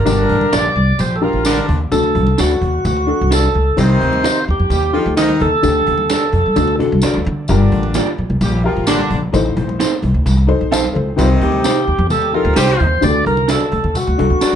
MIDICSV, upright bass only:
0, 0, Header, 1, 3, 480
1, 0, Start_track
1, 0, Key_signature, -2, "minor"
1, 0, Tempo, 462606
1, 73, Time_signature, 4, 2, 24, 8
1, 15101, End_track
2, 0, Start_track
2, 0, Title_t, "Upright bass"
2, 0, Program_c, 0, 32
2, 67, Note_on_c, 0, 31, 101
2, 249, Note_off_c, 0, 31, 0
2, 308, Note_on_c, 0, 33, 84
2, 490, Note_off_c, 0, 33, 0
2, 552, Note_on_c, 0, 34, 83
2, 733, Note_off_c, 0, 34, 0
2, 784, Note_on_c, 0, 36, 85
2, 968, Note_off_c, 0, 36, 0
2, 1031, Note_on_c, 0, 34, 94
2, 1303, Note_off_c, 0, 34, 0
2, 1382, Note_on_c, 0, 33, 77
2, 1657, Note_off_c, 0, 33, 0
2, 1752, Note_on_c, 0, 39, 83
2, 1934, Note_off_c, 0, 39, 0
2, 1994, Note_on_c, 0, 38, 96
2, 2230, Note_on_c, 0, 36, 90
2, 2246, Note_off_c, 0, 38, 0
2, 2413, Note_off_c, 0, 36, 0
2, 2479, Note_on_c, 0, 38, 82
2, 2659, Note_off_c, 0, 38, 0
2, 2712, Note_on_c, 0, 39, 82
2, 2895, Note_off_c, 0, 39, 0
2, 2955, Note_on_c, 0, 38, 99
2, 3227, Note_off_c, 0, 38, 0
2, 3333, Note_on_c, 0, 36, 84
2, 3599, Note_off_c, 0, 36, 0
2, 3686, Note_on_c, 0, 37, 87
2, 3864, Note_off_c, 0, 37, 0
2, 3922, Note_on_c, 0, 36, 104
2, 4102, Note_off_c, 0, 36, 0
2, 4166, Note_on_c, 0, 38, 79
2, 4435, Note_off_c, 0, 38, 0
2, 4651, Note_on_c, 0, 39, 80
2, 4738, Note_off_c, 0, 39, 0
2, 4767, Note_on_c, 0, 41, 87
2, 4856, Note_off_c, 0, 41, 0
2, 4879, Note_on_c, 0, 39, 86
2, 5150, Note_off_c, 0, 39, 0
2, 5247, Note_on_c, 0, 38, 92
2, 5516, Note_off_c, 0, 38, 0
2, 5612, Note_on_c, 0, 39, 90
2, 5789, Note_off_c, 0, 39, 0
2, 5846, Note_on_c, 0, 38, 95
2, 6025, Note_off_c, 0, 38, 0
2, 6091, Note_on_c, 0, 39, 87
2, 6359, Note_off_c, 0, 39, 0
2, 6565, Note_on_c, 0, 41, 85
2, 6655, Note_off_c, 0, 41, 0
2, 6702, Note_on_c, 0, 43, 79
2, 6785, Note_off_c, 0, 43, 0
2, 6811, Note_on_c, 0, 38, 104
2, 7078, Note_off_c, 0, 38, 0
2, 7181, Note_on_c, 0, 36, 87
2, 7265, Note_off_c, 0, 36, 0
2, 7433, Note_on_c, 0, 38, 77
2, 7513, Note_off_c, 0, 38, 0
2, 7538, Note_on_c, 0, 50, 107
2, 7772, Note_on_c, 0, 31, 97
2, 7788, Note_off_c, 0, 50, 0
2, 7949, Note_off_c, 0, 31, 0
2, 8009, Note_on_c, 0, 33, 90
2, 8277, Note_off_c, 0, 33, 0
2, 8490, Note_on_c, 0, 34, 76
2, 8578, Note_off_c, 0, 34, 0
2, 8608, Note_on_c, 0, 36, 88
2, 8697, Note_off_c, 0, 36, 0
2, 8725, Note_on_c, 0, 34, 94
2, 8994, Note_off_c, 0, 34, 0
2, 9095, Note_on_c, 0, 33, 84
2, 9360, Note_off_c, 0, 33, 0
2, 9448, Note_on_c, 0, 34, 84
2, 9626, Note_off_c, 0, 34, 0
2, 9688, Note_on_c, 0, 33, 95
2, 9866, Note_off_c, 0, 33, 0
2, 9928, Note_on_c, 0, 34, 87
2, 10195, Note_off_c, 0, 34, 0
2, 10408, Note_on_c, 0, 36, 86
2, 10496, Note_off_c, 0, 36, 0
2, 10524, Note_on_c, 0, 38, 87
2, 10613, Note_off_c, 0, 38, 0
2, 10648, Note_on_c, 0, 36, 93
2, 10915, Note_off_c, 0, 36, 0
2, 11006, Note_on_c, 0, 34, 84
2, 11273, Note_off_c, 0, 34, 0
2, 11373, Note_on_c, 0, 37, 90
2, 11548, Note_off_c, 0, 37, 0
2, 11606, Note_on_c, 0, 36, 95
2, 11784, Note_off_c, 0, 36, 0
2, 11843, Note_on_c, 0, 38, 89
2, 12111, Note_off_c, 0, 38, 0
2, 12320, Note_on_c, 0, 39, 82
2, 12410, Note_off_c, 0, 39, 0
2, 12435, Note_on_c, 0, 41, 93
2, 12565, Note_off_c, 0, 41, 0
2, 12565, Note_on_c, 0, 39, 98
2, 12832, Note_off_c, 0, 39, 0
2, 12914, Note_on_c, 0, 38, 94
2, 13006, Note_off_c, 0, 38, 0
2, 13036, Note_on_c, 0, 36, 87
2, 13216, Note_off_c, 0, 36, 0
2, 13283, Note_on_c, 0, 39, 92
2, 13460, Note_off_c, 0, 39, 0
2, 13523, Note_on_c, 0, 38, 109
2, 13700, Note_off_c, 0, 38, 0
2, 13761, Note_on_c, 0, 36, 83
2, 14029, Note_off_c, 0, 36, 0
2, 14237, Note_on_c, 0, 38, 86
2, 14327, Note_off_c, 0, 38, 0
2, 14358, Note_on_c, 0, 39, 79
2, 14447, Note_off_c, 0, 39, 0
2, 14602, Note_on_c, 0, 38, 85
2, 14690, Note_off_c, 0, 38, 0
2, 14728, Note_on_c, 0, 36, 76
2, 14813, Note_off_c, 0, 36, 0
2, 14839, Note_on_c, 0, 38, 82
2, 14928, Note_off_c, 0, 38, 0
2, 15101, End_track
3, 0, Start_track
3, 0, Title_t, "Muted upright bass strokes"
3, 7303, Note_on_c, 9, 29, 41
3, 7407, Note_off_c, 9, 29, 0
3, 14958, Note_on_c, 9, 29, 43
3, 15062, Note_off_c, 9, 29, 0
3, 15101, End_track
0, 0, End_of_file